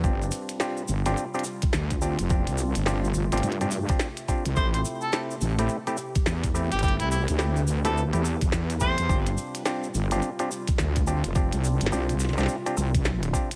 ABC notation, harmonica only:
X:1
M:4/4
L:1/16
Q:"Swing 16ths" 1/4=106
K:Gmix
V:1 name="Harmonica"
z16 | z16 | c c z A z8 z3 G | G E E z4 A z6 c2 |
z16 | z16 |]